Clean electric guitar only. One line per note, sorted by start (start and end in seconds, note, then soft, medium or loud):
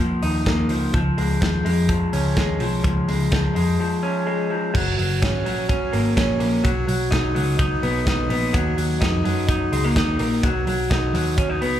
0.00 0.70 F3 medium
0.00 0.45 A#3 soft
0.00 0.21 D#4 medium
0.23 0.99 D#4 medium
0.46 0.99 A#3 medium
0.70 0.93 F3 medium
0.94 1.40 F3 medium
1.17 1.64 G#3 medium
1.41 1.87 F3 medium
1.65 2.35 G#3 medium
1.89 2.59 F3 medium
2.13 4.02 C#4 medium
2.36 3.07 G#3 medium
2.60 2.82 F3 medium
2.84 3.30 F3 medium
3.08 3.54 G#3 medium
3.32 3.79 F3 medium
3.55 4.26 G#3 medium
3.80 4.49 F3 medium
4.03 4.79 C#4 medium
4.27 4.79 G#3 medium
4.50 4.73 F3 medium
4.74 4.97 F#3 medium
4.97 5.45 F#3 medium
5.22 5.68 C#4 medium
5.46 6.63 F#3 medium
5.69 6.15 C#4 medium
5.93 6.39 A#3 medium
6.17 6.69 C#4 medium
6.40 6.69 A#3 medium
6.64 6.87 F#3 medium
6.87 7.34 F#3 medium
7.11 7.58 D#4 medium
7.35 8.53 F#3 medium
7.59 8.06 D#4 medium
7.83 8.29 B3 medium
8.07 9.00 D#4 medium
8.30 8.59 B3 medium
8.53 8.77 F#3 medium
8.77 9.24 F#3 medium
9.01 9.48 D#4 medium
9.24 10.43 F#3 medium
9.48 9.96 D#4 medium
9.72 9.84 G#3 medium
9.84 10.19 A#3 medium
9.96 10.48 D#4 medium
10.20 10.48 A#3 medium
10.43 10.67 F#3 medium
10.67 11.14 F#3 medium
10.90 11.38 D#4 medium
11.14 11.80 F#3 medium
11.38 11.50 C#4 medium
11.50 11.80 D#4 medium
11.61 11.80 B3 medium